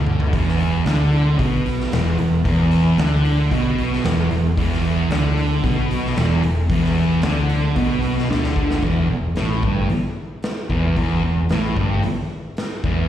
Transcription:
Already playing: D2 D3
0.07 mid tom
0.20 floor tom
0.33 E1 E2, kick, open hi-hat
0.48 snare
0.60 open hi-hat
0.86 D2 D3, snare, open hi-hat
1.12 open hi-hat
1.39 B1 B2, kick, open hi-hat
1.66 open hi-hat
1.80 snare
1.92 E1 E2, snare, open hi-hat
2.18 E1 E2, open hi-hat
2.45 E1 E2, kick, open hi-hat
2.71 open hi-hat
2.98 D2 D3, snare, open hi-hat
3.25 open hi-hat
3.51 B1 B2, kick, open hi-hat
3.78 open hi-hat
3.93 snare
4.04 E1 E2, snare, open hi-hat
4.31 E1 E2, open hi-hat
4.57 E1 E2, kick, open hi-hat
4.73 snare
4.85 open hi-hat
5.10 D2 D3, snare, open hi-hat
5.37 open hi-hat
5.64 B1 B2, kick, open hi-hat
5.91 open hi-hat
6.06 snare
6.16 E1 E2, snare, open hi-hat
6.43 E1 E2, open hi-hat
6.70 E1 E2, kick, open hi-hat
6.84 snare
6.95 open hi-hat
7.22 D2 D3, snare, open hi-hat
7.49 open hi-hat
7.76 B1 B2, kick, open hi-hat
8.02 open hi-hat
8.18 snare
8.30 D2 D3, snare
8.44 snare
8.56 kick
8.70 snare
8.83 E1 E2, kick, open hi-hat
9.10 E1 E2
9.36 A1 A2, snare, open hi-hat
9.63 G1 G2, kick
9.90 muted picked electric bass stroke, muted distorted electric guitar stroke, open hi-hat
10.43 snare, open hi-hat
10.70 E1 E2, kick
10.96 E1 E2, kick, open hi-hat
11.23 E1 E2
11.49 A1 A2, snare, open hi-hat
11.77 G1 G2, kick
12.03 muted picked electric bass stroke, muted distorted electric guitar stroke, open hi-hat
12.57 snare, open hi-hat
12.84 E1 E2, kick

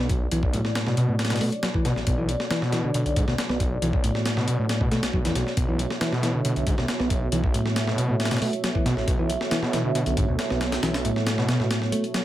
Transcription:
Already playing: B3 F#4 A4 C#5 D5
0.00 B1
0.09 kick, closed hi-hat
0.32 B1 E3, closed hi-hat
0.43 kick
0.53 A2, closed hi-hat
0.65 snare
0.75 snare, closed hi-hat
0.87 B2, snare
0.97 B2, closed hi-hat
1.09 A2
1.19 snare, closed hi-hat
1.25 snare, closed hi-hat
1.30 B2, snare, closed hi-hat
1.36 snare, closed hi-hat
1.41 B2 A3, open hi-hat
1.52 closed hi-hat
1.63 F#3, snare, closed hi-hat
1.74 E3, kick
1.85 B2, snare, closed hi-hat
1.96 A1, snare
2.07 B1 B2, kick, closed hi-hat
2.18 E3
2.29 closed hi-hat
2.40 snare
2.51 E3, snare, closed hi-hat
2.62 B2, snare
2.73 E3, snare, closed hi-hat
2.84 D3
2.94 B2, closed hi-hat
3.06 B1, closed hi-hat
3.16 G#2, kick, closed hi-hat
3.28 D2 B2, snare
3.38 snare, closed hi-hat
3.49 B1 B3, snare
3.60 kick, closed hi-hat
3.82 B1 E3, closed hi-hat
3.93 kick
4.04 A2, closed hi-hat
4.15 snare
4.26 snare, closed hi-hat
4.37 B2, snare
4.48 B2, closed hi-hat
4.59 A2
4.69 snare, closed hi-hat
4.81 B2, kick
4.91 B2 A3, snare, closed hi-hat
5.03 B1, snare, closed hi-hat
5.13 B1 F#3, kick
5.25 F#2 E3, snare, closed hi-hat
5.35 B1 B2, snare, closed hi-hat
5.47 snare
5.57 B1 B2 E5, kick, closed hi-hat
5.68 E3
5.79 closed hi-hat
5.91 snare
6.01 E3, snare, closed hi-hat
6.12 B2, snare
6.23 E3, snare, closed hi-hat
6.34 D3
6.45 B2, closed hi-hat
6.56 B1, closed hi-hat
6.67 G#2, kick, closed hi-hat
6.78 D2 B2, snare
6.88 snare, closed hi-hat
7.00 B1 B3, snare
7.10 kick, closed hi-hat
7.32 B1 E3, closed hi-hat
7.44 kick
7.54 A2, closed hi-hat
7.66 snare
7.76 snare, closed hi-hat
7.87 B2, snare
7.98 B2, closed hi-hat
8.09 A2
8.20 snare, closed hi-hat
8.25 snare, closed hi-hat
8.31 B2, snare, closed hi-hat
8.37 snare, closed hi-hat
8.42 B2 A3, open hi-hat
8.53 closed hi-hat
8.64 F#3, snare, closed hi-hat
8.75 E3, kick
8.86 B2, snare, closed hi-hat
8.97 A1, snare
9.07 B1 B2, kick, closed hi-hat
9.19 E3
9.30 closed hi-hat
9.41 snare
9.51 E3, snare, closed hi-hat
9.62 B2, snare
9.73 E3, snare, closed hi-hat
9.85 D3
9.95 B2, closed hi-hat
10.06 B1, closed hi-hat
10.17 G#2, kick, closed hi-hat
10.28 D2 B2
10.39 snare, closed hi-hat
10.50 B1 B3, snare
10.61 snare, closed hi-hat
10.72 snare, closed hi-hat
10.83 B1 E3, snare, closed hi-hat
10.94 snare, closed hi-hat
11.05 A2, closed hi-hat
11.16 snare
11.27 snare, closed hi-hat
11.38 B2, snare
11.48 B2, snare, closed hi-hat
11.60 A2, snare
11.71 snare, closed hi-hat
11.82 snare
11.92 A3, closed hi-hat
12.04 closed hi-hat
12.14 F#3, snare, closed hi-hat

